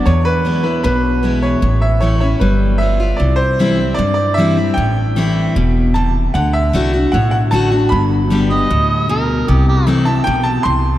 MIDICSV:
0, 0, Header, 1, 5, 480
1, 0, Start_track
1, 0, Tempo, 392670
1, 71, Time_signature, 4, 2, 24, 8
1, 13426, End_track
2, 0, Start_track
2, 0, Title_t, "Upright piano"
2, 0, Program_c, 0, 0
2, 68, Note_on_c, 0, 73, 88
2, 305, Note_on_c, 0, 71, 99
2, 317, Note_off_c, 0, 73, 0
2, 755, Note_off_c, 0, 71, 0
2, 774, Note_on_c, 0, 71, 76
2, 1002, Note_off_c, 0, 71, 0
2, 1020, Note_on_c, 0, 71, 83
2, 1742, Note_on_c, 0, 73, 82
2, 1768, Note_off_c, 0, 71, 0
2, 2220, Note_on_c, 0, 76, 77
2, 2242, Note_off_c, 0, 73, 0
2, 2452, Note_on_c, 0, 73, 77
2, 2473, Note_off_c, 0, 76, 0
2, 2674, Note_off_c, 0, 73, 0
2, 2692, Note_on_c, 0, 73, 72
2, 2753, Note_off_c, 0, 73, 0
2, 2929, Note_on_c, 0, 71, 68
2, 3400, Note_on_c, 0, 76, 82
2, 3612, Note_off_c, 0, 71, 0
2, 3870, Note_on_c, 0, 74, 80
2, 3912, Note_off_c, 0, 76, 0
2, 4106, Note_on_c, 0, 72, 95
2, 4114, Note_off_c, 0, 74, 0
2, 4822, Note_on_c, 0, 74, 94
2, 4873, Note_off_c, 0, 72, 0
2, 5044, Note_off_c, 0, 74, 0
2, 5062, Note_on_c, 0, 74, 85
2, 5307, Note_on_c, 0, 76, 88
2, 5337, Note_off_c, 0, 74, 0
2, 5792, Note_on_c, 0, 79, 91
2, 5827, Note_off_c, 0, 76, 0
2, 6727, Note_off_c, 0, 79, 0
2, 7263, Note_on_c, 0, 81, 80
2, 7749, Note_on_c, 0, 78, 86
2, 7765, Note_off_c, 0, 81, 0
2, 7987, Note_on_c, 0, 76, 84
2, 8001, Note_off_c, 0, 78, 0
2, 8701, Note_on_c, 0, 78, 86
2, 8734, Note_off_c, 0, 76, 0
2, 8920, Note_off_c, 0, 78, 0
2, 8938, Note_on_c, 0, 78, 91
2, 8999, Note_off_c, 0, 78, 0
2, 9179, Note_on_c, 0, 81, 97
2, 9634, Note_off_c, 0, 81, 0
2, 9645, Note_on_c, 0, 83, 89
2, 10571, Note_off_c, 0, 83, 0
2, 12289, Note_on_c, 0, 81, 84
2, 12516, Note_on_c, 0, 79, 97
2, 12547, Note_off_c, 0, 81, 0
2, 12757, Note_on_c, 0, 81, 99
2, 12781, Note_off_c, 0, 79, 0
2, 12996, Note_on_c, 0, 84, 95
2, 13020, Note_off_c, 0, 81, 0
2, 13426, Note_off_c, 0, 84, 0
2, 13426, End_track
3, 0, Start_track
3, 0, Title_t, "Harmonica"
3, 0, Program_c, 1, 22
3, 10396, Note_on_c, 1, 75, 90
3, 11093, Note_off_c, 1, 75, 0
3, 11122, Note_on_c, 1, 70, 94
3, 11599, Note_on_c, 1, 67, 78
3, 11617, Note_off_c, 1, 70, 0
3, 11828, Note_off_c, 1, 67, 0
3, 11838, Note_on_c, 1, 67, 88
3, 12068, Note_off_c, 1, 67, 0
3, 13426, End_track
4, 0, Start_track
4, 0, Title_t, "Steel-string acoustic guitar"
4, 0, Program_c, 2, 25
4, 79, Note_on_c, 2, 40, 91
4, 546, Note_on_c, 2, 52, 57
4, 558, Note_on_c, 2, 56, 60
4, 567, Note_on_c, 2, 59, 62
4, 573, Note_on_c, 2, 64, 65
4, 765, Note_off_c, 2, 64, 0
4, 779, Note_off_c, 2, 52, 0
4, 779, Note_on_c, 2, 64, 55
4, 785, Note_off_c, 2, 56, 0
4, 789, Note_off_c, 2, 59, 0
4, 810, Note_on_c, 2, 59, 47
4, 987, Note_off_c, 2, 40, 0
4, 1015, Note_off_c, 2, 64, 0
4, 1029, Note_on_c, 2, 47, 98
4, 1031, Note_off_c, 2, 59, 0
4, 1500, Note_on_c, 2, 52, 63
4, 1513, Note_on_c, 2, 56, 56
4, 1520, Note_on_c, 2, 59, 63
4, 1527, Note_on_c, 2, 64, 60
4, 1942, Note_off_c, 2, 47, 0
4, 1962, Note_off_c, 2, 52, 0
4, 1968, Note_off_c, 2, 56, 0
4, 1972, Note_off_c, 2, 59, 0
4, 1975, Note_off_c, 2, 64, 0
4, 1983, Note_on_c, 2, 45, 81
4, 2463, Note_on_c, 2, 52, 53
4, 2474, Note_on_c, 2, 57, 63
4, 2479, Note_on_c, 2, 61, 62
4, 2489, Note_on_c, 2, 64, 66
4, 2684, Note_off_c, 2, 64, 0
4, 2698, Note_off_c, 2, 52, 0
4, 2699, Note_on_c, 2, 64, 55
4, 2703, Note_off_c, 2, 57, 0
4, 2706, Note_off_c, 2, 61, 0
4, 2728, Note_on_c, 2, 61, 48
4, 2900, Note_off_c, 2, 45, 0
4, 2936, Note_off_c, 2, 64, 0
4, 2949, Note_on_c, 2, 55, 91
4, 2951, Note_off_c, 2, 61, 0
4, 3414, Note_off_c, 2, 55, 0
4, 3429, Note_on_c, 2, 55, 54
4, 3443, Note_on_c, 2, 59, 62
4, 3453, Note_on_c, 2, 65, 64
4, 3650, Note_off_c, 2, 65, 0
4, 3661, Note_off_c, 2, 55, 0
4, 3665, Note_on_c, 2, 65, 56
4, 3668, Note_off_c, 2, 59, 0
4, 3695, Note_on_c, 2, 59, 49
4, 3900, Note_off_c, 2, 65, 0
4, 3907, Note_on_c, 2, 48, 82
4, 3915, Note_off_c, 2, 59, 0
4, 4390, Note_on_c, 2, 52, 80
4, 4398, Note_on_c, 2, 55, 84
4, 4405, Note_on_c, 2, 60, 82
4, 4411, Note_on_c, 2, 64, 89
4, 4614, Note_off_c, 2, 64, 0
4, 4623, Note_off_c, 2, 52, 0
4, 4627, Note_off_c, 2, 55, 0
4, 4629, Note_on_c, 2, 64, 48
4, 4630, Note_off_c, 2, 60, 0
4, 4652, Note_on_c, 2, 60, 44
4, 4824, Note_off_c, 2, 48, 0
4, 4863, Note_off_c, 2, 64, 0
4, 4874, Note_off_c, 2, 60, 0
4, 4874, Note_on_c, 2, 43, 89
4, 5349, Note_on_c, 2, 52, 83
4, 5359, Note_on_c, 2, 55, 87
4, 5370, Note_on_c, 2, 60, 94
4, 5375, Note_on_c, 2, 64, 83
4, 5572, Note_off_c, 2, 64, 0
4, 5583, Note_off_c, 2, 52, 0
4, 5586, Note_on_c, 2, 64, 55
4, 5588, Note_off_c, 2, 55, 0
4, 5594, Note_off_c, 2, 60, 0
4, 5611, Note_on_c, 2, 60, 44
4, 5788, Note_off_c, 2, 43, 0
4, 5822, Note_off_c, 2, 64, 0
4, 5834, Note_off_c, 2, 60, 0
4, 5837, Note_on_c, 2, 45, 84
4, 6309, Note_on_c, 2, 52, 84
4, 6316, Note_on_c, 2, 57, 84
4, 6327, Note_on_c, 2, 60, 91
4, 6333, Note_on_c, 2, 64, 92
4, 6750, Note_off_c, 2, 45, 0
4, 6769, Note_off_c, 2, 52, 0
4, 6773, Note_off_c, 2, 57, 0
4, 6779, Note_off_c, 2, 60, 0
4, 6782, Note_off_c, 2, 64, 0
4, 6798, Note_on_c, 2, 47, 92
4, 7254, Note_off_c, 2, 47, 0
4, 7280, Note_on_c, 2, 48, 84
4, 7735, Note_off_c, 2, 48, 0
4, 7761, Note_on_c, 2, 50, 85
4, 8216, Note_off_c, 2, 50, 0
4, 8231, Note_on_c, 2, 50, 87
4, 8243, Note_on_c, 2, 57, 89
4, 8248, Note_on_c, 2, 62, 91
4, 8257, Note_on_c, 2, 66, 105
4, 8460, Note_off_c, 2, 66, 0
4, 8465, Note_off_c, 2, 50, 0
4, 8471, Note_off_c, 2, 57, 0
4, 8473, Note_off_c, 2, 62, 0
4, 8475, Note_on_c, 2, 66, 58
4, 8501, Note_on_c, 2, 62, 46
4, 8707, Note_off_c, 2, 66, 0
4, 8720, Note_off_c, 2, 62, 0
4, 8728, Note_on_c, 2, 45, 94
4, 9186, Note_on_c, 2, 50, 83
4, 9197, Note_on_c, 2, 57, 83
4, 9208, Note_on_c, 2, 62, 85
4, 9216, Note_on_c, 2, 66, 96
4, 9416, Note_off_c, 2, 66, 0
4, 9422, Note_off_c, 2, 50, 0
4, 9428, Note_off_c, 2, 57, 0
4, 9430, Note_on_c, 2, 66, 60
4, 9433, Note_off_c, 2, 62, 0
4, 9456, Note_on_c, 2, 62, 47
4, 9634, Note_off_c, 2, 45, 0
4, 9664, Note_off_c, 2, 66, 0
4, 9677, Note_off_c, 2, 62, 0
4, 9680, Note_on_c, 2, 43, 90
4, 10149, Note_on_c, 2, 50, 83
4, 10159, Note_on_c, 2, 55, 82
4, 10167, Note_on_c, 2, 59, 92
4, 10176, Note_on_c, 2, 67, 85
4, 10377, Note_off_c, 2, 67, 0
4, 10383, Note_off_c, 2, 50, 0
4, 10388, Note_off_c, 2, 55, 0
4, 10392, Note_off_c, 2, 59, 0
4, 10392, Note_on_c, 2, 67, 59
4, 10417, Note_on_c, 2, 59, 45
4, 10590, Note_off_c, 2, 43, 0
4, 10624, Note_off_c, 2, 67, 0
4, 10637, Note_off_c, 2, 59, 0
4, 10640, Note_on_c, 2, 45, 90
4, 11093, Note_off_c, 2, 45, 0
4, 11115, Note_on_c, 2, 47, 80
4, 11570, Note_off_c, 2, 47, 0
4, 11592, Note_on_c, 2, 48, 85
4, 12061, Note_on_c, 2, 52, 86
4, 12069, Note_on_c, 2, 57, 89
4, 12076, Note_on_c, 2, 60, 89
4, 12084, Note_on_c, 2, 64, 92
4, 12286, Note_off_c, 2, 64, 0
4, 12296, Note_off_c, 2, 52, 0
4, 12301, Note_off_c, 2, 57, 0
4, 12301, Note_on_c, 2, 64, 55
4, 12304, Note_off_c, 2, 60, 0
4, 12326, Note_on_c, 2, 60, 42
4, 12502, Note_off_c, 2, 48, 0
4, 12536, Note_off_c, 2, 64, 0
4, 12549, Note_off_c, 2, 60, 0
4, 12553, Note_on_c, 2, 47, 87
4, 13006, Note_off_c, 2, 47, 0
4, 13022, Note_on_c, 2, 48, 76
4, 13426, Note_off_c, 2, 48, 0
4, 13426, End_track
5, 0, Start_track
5, 0, Title_t, "Upright bass"
5, 0, Program_c, 3, 32
5, 74, Note_on_c, 3, 40, 89
5, 929, Note_off_c, 3, 40, 0
5, 1037, Note_on_c, 3, 35, 76
5, 1891, Note_off_c, 3, 35, 0
5, 1985, Note_on_c, 3, 33, 93
5, 2845, Note_off_c, 3, 33, 0
5, 2946, Note_on_c, 3, 31, 82
5, 3807, Note_off_c, 3, 31, 0
5, 3912, Note_on_c, 3, 36, 90
5, 4770, Note_off_c, 3, 36, 0
5, 4868, Note_on_c, 3, 43, 80
5, 5729, Note_off_c, 3, 43, 0
5, 5835, Note_on_c, 3, 33, 91
5, 6693, Note_off_c, 3, 33, 0
5, 6795, Note_on_c, 3, 28, 77
5, 7653, Note_off_c, 3, 28, 0
5, 7756, Note_on_c, 3, 38, 93
5, 8186, Note_off_c, 3, 38, 0
5, 8233, Note_on_c, 3, 36, 81
5, 8643, Note_off_c, 3, 36, 0
5, 8719, Note_on_c, 3, 35, 81
5, 9126, Note_off_c, 3, 35, 0
5, 9198, Note_on_c, 3, 33, 80
5, 9606, Note_off_c, 3, 33, 0
5, 9678, Note_on_c, 3, 31, 94
5, 10533, Note_off_c, 3, 31, 0
5, 10638, Note_on_c, 3, 38, 81
5, 11492, Note_off_c, 3, 38, 0
5, 11596, Note_on_c, 3, 36, 90
5, 12449, Note_off_c, 3, 36, 0
5, 12555, Note_on_c, 3, 35, 82
5, 12960, Note_off_c, 3, 35, 0
5, 13027, Note_on_c, 3, 36, 77
5, 13426, Note_off_c, 3, 36, 0
5, 13426, End_track
0, 0, End_of_file